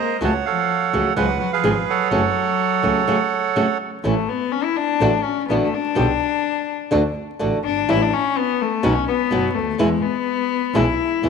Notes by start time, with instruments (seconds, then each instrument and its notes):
Already playing: cello A#3, bandoneon C5 D#5 A#5
0.21 double bass C#2, nylon-string guitar C#3 F#3 A3 C#4 F#4, cello A3, bandoneon C#5 F#5 A5
0.46 cello F3, bandoneon A4 C#5 F5
0.93 double bass C#2, nylon-string guitar C#3 F#3 A3 C#4 F#4
1.16 double bass C#2, nylon-string guitar C#3 F3 G#3 B3 G#4, cello F#3, bandoneon B4 F#5
1.40 cello F#3, bandoneon F#5
1.53 cello F3, bandoneon G#4 B4 F5
1.64 double bass G#1, nylon-string guitar C#3 F3 G#3 B3 G#4
1.90 cello F#3, bandoneon A4 C#5 F#5
2.11 double bass F#1, nylon-string guitar C#3 F#3 A3 C#4 F#4
2.83 double bass C#2, nylon-string guitar C#3 F#3 A3 C#4 F#4
3.08 nylon-string guitar C#3 F#3 A3 C#4 F#4
3.56 nylon-string guitar C#3 F#3 A3 C#4 F#4
4.04 double bass A1, nylon-string guitar E3 A3 C#4 E4, cello A3
4.29 cello B3
4.52 cello C#4
4.64 cello E4
4.76 cello D4
5.00 double bass A1, nylon-string guitar D3 A3 D4 F#4
5.24 cello C#4
5.48 double bass A1, nylon-string guitar D3 A3 D4 F#4, cello B3
5.61 cello A3
5.74 cello D4
5.95 double bass B1, nylon-string guitar B2 D3 G3 B3 G4
6.91 double bass D2, nylon-string guitar D3 A3 D4 F#4
7.39 double bass A1, nylon-string guitar D3 A3 D4 F#4
7.64 double bass G1, cello D4
7.89 double bass A1, nylon-string guitar E3 G3 C#4 E4, cello E4
8.02 cello D4
8.13 cello C#4
8.37 cello B3
8.61 cello A3
8.83 double bass B1, nylon-string guitar B2 F#3 B3 D#4 F#4, cello C#4
9.08 cello B3
9.31 double bass F#1, nylon-string guitar B2 F#3 B3 D#4 F#4
9.55 double bass D2, cello A3
9.78 double bass E2, nylon-string guitar B2 E3 G#3 B3 E4, cello G#3
10.02 cello B3
10.74 double bass B1, nylon-string guitar B2 E3 G#3 B3 E4, cello E4
11.22 double bass E2, nylon-string guitar B2 E3 G#3 B3 E4